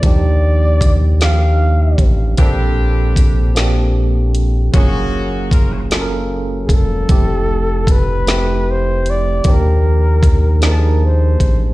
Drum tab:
HH |x-xx-x|x-xx-x|x-xx-x|x-xx-x|
SD |---o--|---o--|---o--|---o--|
BD |o-o--o|o-o---|o-o--o|o-o---|

HH |x-xx-x|
SD |---o--|
BD |o-o--o|